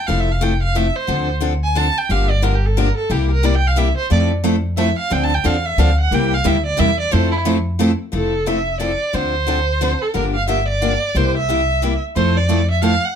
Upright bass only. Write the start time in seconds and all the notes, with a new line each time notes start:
0.08 F1
1.08 D2
2.09 G1
3.10 C2
4.11 F2
5.11 D2
5.45 E2
5.78 D2
6.11 C2
6.45 D2
6.79 E2
7.13 F2
8.13 F1
9.14 D2
10.15 G1
11.15 C2
12.16 F2